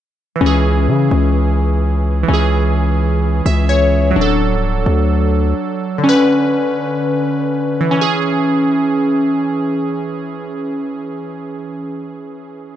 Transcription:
0.36 synth keys E3
0.41 808-style bass C#2, synth keys C#4
0.46 synth keys G#4
0.88 808-style bass C#3
1.11 808-style bass C#2
2.23 synth keys E3
2.28 808-style bass C#2, synth keys C#4
2.34 synth keys G#4
3.46 808-style bass C#2, synth keys E5
3.69 synth keys C#5
4.11 synth keys F#3
4.16 808-style bass D1, synth keys D4
4.21 synth keys A4
4.51 808-style bass C#1
4.86 808-style bass D2
5.98 synth keys D3
6.04 synth keys C#4
6.09 synth keys B4
7.81 synth keys E3
7.91 synth keys C#4
8.01 synth keys G#4

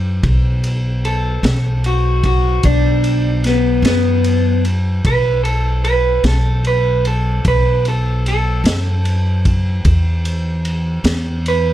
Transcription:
Already playing: upright bass F#2
0.23 upright bass B1, kick, ride
0.64 ride
1.05 clean electric guitar A4, ride
1.43 upright bass B1, snare, ride
1.84 clean electric guitar F#4, ride
2.23 clean electric guitar F#4, kick, ride
2.63 upright bass B1, clean electric guitar D4, kick, ride
3.04 ride
3.44 clean electric guitar B3, snare, ride
3.82 upright bass F#2, clean electric guitar B3, snare, ride
4.24 ride
4.65 ride
5.05 upright bass B1, clean electric guitar B4, kick, ride
5.44 clean electric guitar A4, ride
5.84 clean electric guitar B4, ride
6.24 upright bass B1, clean electric guitar A4, snare, ride
6.65 clean electric guitar B4, ride
7.05 clean electric guitar A4, ride
7.45 upright bass B1, clean electric guitar B4, kick, ride
7.85 clean electric guitar A4, ride
8.26 clean electric guitar A4, ride
8.64 upright bass F#2, snare, ride
9.05 ride
9.45 kick, ride
9.85 upright bass E2, kick, ride
10.25 ride
10.65 ride
11.04 upright bass E2, snare, ride
11.46 clean electric guitar B4, ride

